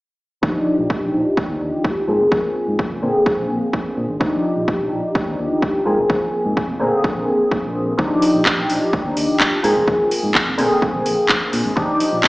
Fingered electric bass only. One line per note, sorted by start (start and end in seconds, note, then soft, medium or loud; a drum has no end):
0.43 0.50 D#2 medium
0.79 0.86 A#1 medium
1.02 1.09 A#1 medium
1.14 1.21 A#1 medium
1.37 muted fingered electric bass stroke soft
1.49 1.57 D#2 medium
1.61 1.68 D#2 medium
2.08 2.16 G#2 medium
2.20 2.27 F1 medium
2.32 2.39 G#1 medium
2.68 2.75 G#2 medium
2.91 2.98 F1 medium
3.03 3.10 A#2 medium
3.38 3.46 A#1 medium
3.50 3.58 A#1 medium
3.97 4.05 A#2 medium
4.09 4.16 G#1 medium
4.21 4.28 D#2 medium
4.56 4.64 A#1 medium
4.80 4.87 A#1 medium
4.92 4.99 A#1 medium
5.15 muted fingered electric bass stroke soft
5.27 5.35 D#2 medium
5.39 5.46 D#2 medium
5.86 5.94 G#2 medium
5.98 6.05 F1 medium
6.10 6.17 G#1 medium
6.45 6.53 G#2 medium
6.69 6.76 F1 medium
6.81 6.88 A#2 medium
7.16 7.24 A#1 medium
7.64 7.92 A#1 medium
7.99 8.06 D#2 medium
8.35 8.42 A#1 medium
8.58 8.65 A#1 medium
8.69 8.77 A#1 medium
8.93 muted fingered electric bass stroke soft
9.05 9.12 D#2 medium
9.17 9.24 D#2 medium
9.64 9.72 G#2 medium
9.76 9.83 F1 medium
9.88 9.95 G#1 medium
10.23 10.31 G#2 medium
10.47 10.54 F1 medium
10.59 10.66 A#2 medium
10.94 11.02 A#1 medium
11.06 11.13 A#1 medium
11.53 11.61 A#2 medium
11.65 11.72 G#1 medium
11.77 11.84 D#2 medium
12.13 12.20 A#1 medium